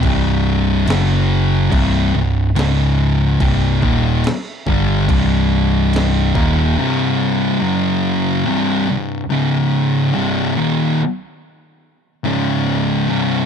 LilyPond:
<<
  \new Staff \with { instrumentName = "Distorted electric guitar" } { \clef bass \time 4/4 \key c \phrygian \tempo 4 = 71 <c, g, c>4 <fis, cis fis>4 <c, g, c>8 <c, g,>8 <des, aes, des>4 | <c, g, c>8 <ees, bes, ees>8 r8 <g, d g>8 <c, g, c>4. <ees, bes, ees>8 | <c, g, c>4 <fis, cis fis>4 <c, g, c>8 <c, g,>8 <des, aes, des>4 | <c, g, c>8 <ees, bes, ees>8 r4. <des, aes, des>4 <c, g, c>8 | }
  \new Staff \with { instrumentName = "Distorted electric guitar" } { \clef bass \time 4/4 \key c \phrygian <c, g, c>4 <fis, cis fis>4 <c, g, c>8 <c, g,>8 <des, aes, des>4 | <c, g, c>8 <ees, bes, ees>8 r8 <g, d g>8 <c, g, c>4. <ees, bes, ees>8 | <c, g, c>4 <fis, cis fis>4 <c, g, c>8 <c, g,>8 <des, aes, des>4 | <c, g, c>8 <ees, bes, ees>8 r4. <des, aes, des>4 <c, g, c>8 | }
  \new Staff \with { instrumentName = "Picked electric bass" } { \clef bass \time 4/4 \key c \phrygian c,,4 fis,,4 c,,8 c,,8 des,,4 | c,,8 ees,,8 r8 g,,8 c,,4. ees,,8 | r1 | r1 | }
  \new DrumStaff \with { instrumentName = "Drums" } \drummode { \time 4/4 <cymc bd>4 <cymc sn>4 <cymc bd>4 <cymc sn>4 | <cymc bd>8 bd8 <cymc sn>8 bd8 <cymc bd>4 <cymc sn>8 bd8 | r4 r4 r4 r4 | r4 r4 r4 r4 | }
>>